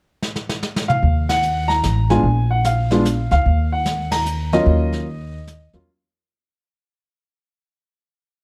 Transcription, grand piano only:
0, 0, Header, 1, 2, 480
1, 0, Start_track
1, 0, Key_signature, -6, "minor"
1, 0, Tempo, 404040
1, 1220, Time_signature, 3, 2, 24, 8
1, 10018, End_track
2, 0, Start_track
2, 0, Title_t, "Grand piano"
2, 0, Program_c, 0, 0
2, 1049, Note_on_c, 0, 77, 93
2, 1496, Note_off_c, 0, 77, 0
2, 1534, Note_on_c, 0, 78, 97
2, 1996, Note_on_c, 0, 82, 103
2, 2027, Note_off_c, 0, 78, 0
2, 2497, Note_on_c, 0, 56, 58
2, 2497, Note_on_c, 0, 80, 94
2, 2498, Note_on_c, 0, 59, 51
2, 2499, Note_off_c, 0, 82, 0
2, 2503, Note_on_c, 0, 65, 62
2, 2507, Note_on_c, 0, 62, 60
2, 2649, Note_off_c, 0, 56, 0
2, 2649, Note_off_c, 0, 59, 0
2, 2652, Note_off_c, 0, 65, 0
2, 2654, Note_off_c, 0, 62, 0
2, 2952, Note_off_c, 0, 80, 0
2, 2976, Note_on_c, 0, 78, 80
2, 3145, Note_off_c, 0, 78, 0
2, 3149, Note_on_c, 0, 77, 79
2, 3458, Note_on_c, 0, 59, 60
2, 3462, Note_on_c, 0, 56, 67
2, 3462, Note_on_c, 0, 62, 61
2, 3471, Note_on_c, 0, 65, 71
2, 3610, Note_off_c, 0, 59, 0
2, 3612, Note_off_c, 0, 56, 0
2, 3612, Note_off_c, 0, 62, 0
2, 3616, Note_off_c, 0, 65, 0
2, 3921, Note_off_c, 0, 77, 0
2, 3939, Note_on_c, 0, 77, 99
2, 4384, Note_off_c, 0, 77, 0
2, 4424, Note_on_c, 0, 78, 78
2, 4889, Note_on_c, 0, 82, 90
2, 4914, Note_off_c, 0, 78, 0
2, 5381, Note_on_c, 0, 58, 62
2, 5385, Note_on_c, 0, 75, 85
2, 5386, Note_off_c, 0, 82, 0
2, 5387, Note_on_c, 0, 54, 64
2, 5395, Note_on_c, 0, 65, 72
2, 5396, Note_on_c, 0, 61, 56
2, 5995, Note_off_c, 0, 58, 0
2, 5998, Note_off_c, 0, 54, 0
2, 6002, Note_off_c, 0, 65, 0
2, 6003, Note_off_c, 0, 61, 0
2, 6771, Note_off_c, 0, 75, 0
2, 6818, Note_on_c, 0, 58, 60
2, 6820, Note_on_c, 0, 54, 68
2, 6822, Note_on_c, 0, 61, 64
2, 6834, Note_on_c, 0, 65, 69
2, 6970, Note_off_c, 0, 58, 0
2, 6971, Note_off_c, 0, 54, 0
2, 6972, Note_off_c, 0, 61, 0
2, 6978, Note_off_c, 0, 65, 0
2, 10018, End_track
0, 0, End_of_file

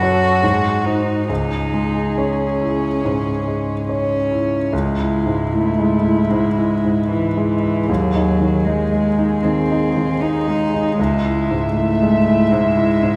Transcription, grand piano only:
0, 0, Header, 1, 2, 480
1, 0, Start_track
1, 0, Key_signature, 4, "minor"
1, 0, Tempo, 863309
1, 719, Time_signature, 4, 2, 24, 8
1, 1690, Tempo, 841515
1, 2650, Tempo, 787402
1, 5530, Tempo, 767263
1, 7853, End_track
2, 0, Start_track
2, 0, Title_t, "Grand piano"
2, 0, Program_c, 0, 0
2, 0, Control_c, 0, 64, 127
2, 0, Note_on_c, 0, 42, 40
2, 15, Note_on_c, 0, 66, 30
2, 15, Note_on_c, 0, 73, 33
2, 217, Note_off_c, 0, 66, 0
2, 217, Note_off_c, 0, 73, 0
2, 224, Note_off_c, 0, 42, 0
2, 241, Note_on_c, 0, 44, 37
2, 249, Control_c, 0, 64, 0
2, 343, Control_c, 0, 64, 127
2, 477, Note_on_c, 0, 63, 27
2, 479, Note_on_c, 0, 72, 30
2, 698, Note_off_c, 0, 63, 0
2, 699, Note_off_c, 0, 72, 0
2, 707, Note_off_c, 0, 44, 0
2, 720, Note_on_c, 0, 37, 35
2, 730, Control_c, 0, 64, 0
2, 825, Control_c, 0, 64, 127
2, 967, Note_on_c, 0, 56, 31
2, 1212, Note_on_c, 0, 73, 31
2, 1356, Note_off_c, 0, 56, 0
2, 1455, Note_on_c, 0, 64, 28
2, 1596, Note_off_c, 0, 73, 0
2, 1669, Note_off_c, 0, 37, 0
2, 1695, Note_on_c, 0, 44, 29
2, 1839, Note_off_c, 0, 64, 0
2, 1939, Note_on_c, 0, 56, 28
2, 2081, Note_off_c, 0, 44, 0
2, 2177, Note_on_c, 0, 73, 28
2, 2320, Note_off_c, 0, 56, 0
2, 2419, Note_on_c, 0, 64, 25
2, 2559, Note_off_c, 0, 73, 0
2, 2653, Note_off_c, 0, 64, 0
2, 2654, Note_on_c, 0, 37, 41
2, 2663, Control_c, 0, 64, 0
2, 2778, Control_c, 0, 64, 127
2, 2817, Note_on_c, 0, 64, 31
2, 2979, Note_on_c, 0, 44, 35
2, 3077, Note_off_c, 0, 64, 0
2, 3140, Note_on_c, 0, 64, 33
2, 3236, Note_off_c, 0, 44, 0
2, 3300, Note_on_c, 0, 56, 33
2, 3394, Note_off_c, 0, 64, 0
2, 3457, Note_on_c, 0, 64, 31
2, 3553, Note_off_c, 0, 56, 0
2, 3593, Note_off_c, 0, 37, 0
2, 3617, Note_on_c, 0, 44, 34
2, 3712, Note_off_c, 0, 64, 0
2, 3779, Note_on_c, 0, 64, 38
2, 3874, Note_off_c, 0, 44, 0
2, 3941, Note_on_c, 0, 44, 29
2, 4037, Note_off_c, 0, 64, 0
2, 4104, Note_on_c, 0, 64, 33
2, 4199, Note_off_c, 0, 44, 0
2, 4263, Note_on_c, 0, 56, 35
2, 4360, Note_off_c, 0, 64, 0
2, 4425, Note_on_c, 0, 64, 31
2, 4519, Note_off_c, 0, 56, 0
2, 4582, Note_off_c, 0, 64, 0
2, 4582, Note_on_c, 0, 39, 43
2, 4593, Control_c, 0, 64, 0
2, 4705, Control_c, 0, 64, 127
2, 4740, Note_on_c, 0, 63, 33
2, 4895, Note_on_c, 0, 51, 35
2, 4989, Note_off_c, 0, 63, 0
2, 5053, Note_on_c, 0, 63, 36
2, 5147, Note_off_c, 0, 51, 0
2, 5211, Note_on_c, 0, 56, 31
2, 5307, Note_off_c, 0, 63, 0
2, 5369, Note_on_c, 0, 63, 33
2, 5467, Note_off_c, 0, 56, 0
2, 5506, Note_off_c, 0, 39, 0
2, 5533, Note_on_c, 0, 51, 35
2, 5627, Note_off_c, 0, 63, 0
2, 5696, Note_on_c, 0, 63, 35
2, 5791, Note_off_c, 0, 51, 0
2, 5857, Note_on_c, 0, 51, 35
2, 5951, Note_off_c, 0, 63, 0
2, 6015, Note_on_c, 0, 63, 34
2, 6110, Note_off_c, 0, 51, 0
2, 6175, Note_on_c, 0, 56, 36
2, 6268, Note_off_c, 0, 63, 0
2, 6335, Note_on_c, 0, 63, 35
2, 6429, Note_off_c, 0, 56, 0
2, 6493, Note_off_c, 0, 63, 0
2, 6498, Note_on_c, 0, 37, 44
2, 6502, Control_c, 0, 64, 0
2, 6601, Control_c, 0, 64, 127
2, 6658, Note_on_c, 0, 64, 34
2, 6818, Note_on_c, 0, 44, 36
2, 6915, Note_off_c, 0, 64, 0
2, 6982, Note_on_c, 0, 64, 37
2, 7075, Note_off_c, 0, 44, 0
2, 7141, Note_on_c, 0, 56, 37
2, 7235, Note_off_c, 0, 64, 0
2, 7299, Note_on_c, 0, 64, 35
2, 7392, Note_off_c, 0, 56, 0
2, 7430, Note_off_c, 0, 37, 0
2, 7454, Note_on_c, 0, 44, 38
2, 7549, Note_off_c, 0, 64, 0
2, 7610, Note_on_c, 0, 64, 40
2, 7707, Note_off_c, 0, 44, 0
2, 7772, Note_on_c, 0, 44, 36
2, 7853, Note_off_c, 0, 44, 0
2, 7853, Note_off_c, 0, 64, 0
2, 7853, End_track
0, 0, End_of_file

